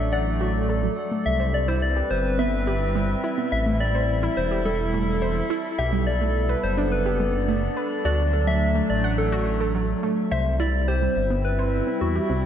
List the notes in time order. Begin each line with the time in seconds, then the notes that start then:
Already playing: A1 F#3 A3 D4 A4 D5 E5
0.13 D5 F#5
0.41 F#4
0.69 A4
0.83 F#3
1.12 A3
1.26 C2 G3 E5
1.40 C5
1.54 D5
1.63 C4 B4
1.68 E4 C5
1.82 D5
1.96 E4 G4
2.11 G1 G3 C5
2.28 E5
2.39 B3 E5
2.67 G4
2.95 G3
3.24 E4
3.38 B3
3.52 A1 E5
3.66 A3
3.80 D5
3.95 C5
4.02 A4
4.23 E4
4.37 E1 C5
4.51 G4
4.65 G3 A4
4.94 A3
5.22 C5
5.50 E4
5.78 B1 G4 E5
5.93 G3
6.05 B3 D5
6.21 A3
6.49 B4
6.60 F#1 D4 C5
6.78 D4 D5
6.92 B4
7.06 G4
7.20 G3
7.48 A3
7.77 B4
8.05 D2 F#3 F#4 D5
8.23 A3
8.33 A4
8.47 F#3 E5
8.76 A3
8.90 A1 D5
9.04 F#5
9.18 A4
9.32 F#4
9.61 A4
9.75 F#3
10.03 A3
10.31 C2 G3 C5 E5
10.59 E4 D5 E5
10.65 C4
10.88 E4 G4 C5
11.02 G3
11.16 G1
11.30 B3
11.45 B4
11.59 C5
11.73 G1
11.87 C4
12.01 E2 F#4
12.15 G4
12.30 C2 C4